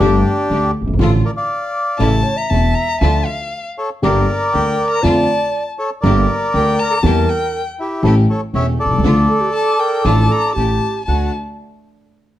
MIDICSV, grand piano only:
0, 0, Header, 1, 2, 480
1, 0, Start_track
1, 0, Key_signature, -1, "minor"
1, 0, Tempo, 503356
1, 948, Time_signature, 4, 2, 24, 8
1, 11816, End_track
2, 0, Start_track
2, 0, Title_t, "Grand piano"
2, 0, Program_c, 0, 0
2, 0, Note_on_c, 0, 50, 74
2, 1, Note_on_c, 0, 43, 99
2, 3, Note_on_c, 0, 31, 86
2, 3, Note_on_c, 0, 55, 72
2, 5, Note_on_c, 0, 57, 65
2, 9, Note_on_c, 0, 67, 89
2, 195, Note_off_c, 0, 50, 0
2, 196, Note_off_c, 0, 43, 0
2, 197, Note_off_c, 0, 55, 0
2, 198, Note_off_c, 0, 31, 0
2, 198, Note_off_c, 0, 57, 0
2, 201, Note_off_c, 0, 67, 0
2, 483, Note_on_c, 0, 38, 63
2, 486, Note_on_c, 0, 50, 59
2, 678, Note_off_c, 0, 38, 0
2, 679, Note_off_c, 0, 50, 0
2, 773, Note_on_c, 0, 30, 53
2, 823, Note_on_c, 0, 31, 69
2, 831, Note_off_c, 0, 30, 0
2, 886, Note_off_c, 0, 31, 0
2, 894, Note_on_c, 0, 32, 74
2, 945, Note_on_c, 0, 50, 69
2, 946, Note_on_c, 0, 53, 63
2, 947, Note_on_c, 0, 57, 64
2, 948, Note_on_c, 0, 33, 79
2, 949, Note_on_c, 0, 65, 73
2, 951, Note_off_c, 0, 32, 0
2, 951, Note_on_c, 0, 45, 84
2, 1147, Note_off_c, 0, 50, 0
2, 1147, Note_off_c, 0, 53, 0
2, 1148, Note_off_c, 0, 33, 0
2, 1148, Note_off_c, 0, 57, 0
2, 1149, Note_off_c, 0, 65, 0
2, 1150, Note_off_c, 0, 45, 0
2, 1895, Note_on_c, 0, 45, 79
2, 1896, Note_on_c, 0, 49, 71
2, 1896, Note_on_c, 0, 52, 68
2, 1897, Note_on_c, 0, 33, 83
2, 1898, Note_on_c, 0, 57, 68
2, 1903, Note_on_c, 0, 64, 78
2, 2102, Note_off_c, 0, 45, 0
2, 2102, Note_off_c, 0, 52, 0
2, 2103, Note_off_c, 0, 33, 0
2, 2103, Note_off_c, 0, 49, 0
2, 2103, Note_off_c, 0, 57, 0
2, 2106, Note_off_c, 0, 64, 0
2, 2386, Note_on_c, 0, 28, 56
2, 2387, Note_on_c, 0, 40, 59
2, 2592, Note_off_c, 0, 28, 0
2, 2593, Note_off_c, 0, 40, 0
2, 2872, Note_on_c, 0, 50, 81
2, 2873, Note_on_c, 0, 38, 75
2, 2875, Note_on_c, 0, 53, 66
2, 2875, Note_on_c, 0, 57, 63
2, 2877, Note_on_c, 0, 65, 76
2, 3076, Note_off_c, 0, 38, 0
2, 3077, Note_off_c, 0, 50, 0
2, 3077, Note_off_c, 0, 53, 0
2, 3077, Note_off_c, 0, 57, 0
2, 3078, Note_off_c, 0, 65, 0
2, 3836, Note_on_c, 0, 50, 74
2, 3840, Note_on_c, 0, 31, 77
2, 3840, Note_on_c, 0, 67, 79
2, 3843, Note_on_c, 0, 43, 83
2, 3844, Note_on_c, 0, 55, 73
2, 3846, Note_on_c, 0, 58, 70
2, 4038, Note_off_c, 0, 50, 0
2, 4040, Note_off_c, 0, 31, 0
2, 4040, Note_off_c, 0, 67, 0
2, 4042, Note_off_c, 0, 43, 0
2, 4042, Note_off_c, 0, 55, 0
2, 4043, Note_off_c, 0, 58, 0
2, 4327, Note_on_c, 0, 50, 60
2, 4328, Note_on_c, 0, 38, 55
2, 4522, Note_off_c, 0, 50, 0
2, 4523, Note_off_c, 0, 38, 0
2, 4794, Note_on_c, 0, 41, 80
2, 4794, Note_on_c, 0, 53, 73
2, 4797, Note_on_c, 0, 50, 72
2, 4799, Note_on_c, 0, 57, 60
2, 4802, Note_on_c, 0, 65, 77
2, 4995, Note_off_c, 0, 41, 0
2, 4996, Note_off_c, 0, 50, 0
2, 4996, Note_off_c, 0, 53, 0
2, 4997, Note_off_c, 0, 57, 0
2, 4999, Note_off_c, 0, 65, 0
2, 5758, Note_on_c, 0, 31, 86
2, 5759, Note_on_c, 0, 43, 88
2, 5761, Note_on_c, 0, 50, 80
2, 5762, Note_on_c, 0, 58, 69
2, 5764, Note_on_c, 0, 55, 68
2, 5764, Note_on_c, 0, 67, 79
2, 5954, Note_off_c, 0, 31, 0
2, 5955, Note_off_c, 0, 43, 0
2, 5956, Note_off_c, 0, 50, 0
2, 5956, Note_off_c, 0, 58, 0
2, 5957, Note_off_c, 0, 55, 0
2, 5958, Note_off_c, 0, 67, 0
2, 6235, Note_on_c, 0, 50, 60
2, 6236, Note_on_c, 0, 38, 67
2, 6431, Note_off_c, 0, 50, 0
2, 6432, Note_off_c, 0, 38, 0
2, 6701, Note_on_c, 0, 52, 80
2, 6703, Note_on_c, 0, 67, 79
2, 6705, Note_on_c, 0, 40, 86
2, 6705, Note_on_c, 0, 55, 68
2, 6705, Note_on_c, 0, 58, 57
2, 6904, Note_off_c, 0, 40, 0
2, 6904, Note_off_c, 0, 52, 0
2, 6904, Note_off_c, 0, 55, 0
2, 6904, Note_off_c, 0, 67, 0
2, 6905, Note_off_c, 0, 58, 0
2, 7651, Note_on_c, 0, 52, 75
2, 7655, Note_on_c, 0, 45, 86
2, 7655, Note_on_c, 0, 57, 69
2, 7657, Note_on_c, 0, 33, 87
2, 7658, Note_on_c, 0, 67, 80
2, 7659, Note_on_c, 0, 61, 72
2, 7856, Note_off_c, 0, 52, 0
2, 7858, Note_off_c, 0, 45, 0
2, 7858, Note_off_c, 0, 57, 0
2, 7859, Note_off_c, 0, 33, 0
2, 7859, Note_off_c, 0, 67, 0
2, 7860, Note_off_c, 0, 61, 0
2, 8137, Note_on_c, 0, 28, 60
2, 8140, Note_on_c, 0, 40, 59
2, 8339, Note_off_c, 0, 28, 0
2, 8340, Note_off_c, 0, 40, 0
2, 8440, Note_on_c, 0, 35, 59
2, 8497, Note_on_c, 0, 36, 66
2, 8498, Note_off_c, 0, 35, 0
2, 8557, Note_off_c, 0, 36, 0
2, 8563, Note_on_c, 0, 37, 77
2, 8614, Note_on_c, 0, 53, 65
2, 8616, Note_on_c, 0, 38, 81
2, 8616, Note_on_c, 0, 57, 54
2, 8619, Note_on_c, 0, 50, 73
2, 8620, Note_off_c, 0, 37, 0
2, 8621, Note_on_c, 0, 62, 65
2, 8621, Note_on_c, 0, 69, 75
2, 8816, Note_off_c, 0, 53, 0
2, 8817, Note_off_c, 0, 38, 0
2, 8817, Note_off_c, 0, 57, 0
2, 8818, Note_off_c, 0, 50, 0
2, 8819, Note_off_c, 0, 62, 0
2, 8819, Note_off_c, 0, 69, 0
2, 9581, Note_on_c, 0, 33, 81
2, 9582, Note_on_c, 0, 45, 86
2, 9582, Note_on_c, 0, 53, 65
2, 9582, Note_on_c, 0, 57, 64
2, 9587, Note_on_c, 0, 69, 82
2, 9589, Note_on_c, 0, 62, 70
2, 9784, Note_off_c, 0, 33, 0
2, 9785, Note_off_c, 0, 45, 0
2, 9785, Note_off_c, 0, 53, 0
2, 9785, Note_off_c, 0, 57, 0
2, 9787, Note_off_c, 0, 69, 0
2, 9788, Note_off_c, 0, 62, 0
2, 10075, Note_on_c, 0, 33, 56
2, 10077, Note_on_c, 0, 45, 62
2, 10277, Note_off_c, 0, 33, 0
2, 10279, Note_off_c, 0, 45, 0
2, 10564, Note_on_c, 0, 38, 51
2, 10564, Note_on_c, 0, 66, 48
2, 10565, Note_on_c, 0, 62, 44
2, 10566, Note_on_c, 0, 57, 42
2, 10763, Note_off_c, 0, 38, 0
2, 10763, Note_off_c, 0, 57, 0
2, 10763, Note_off_c, 0, 62, 0
2, 10763, Note_off_c, 0, 66, 0
2, 11816, End_track
0, 0, End_of_file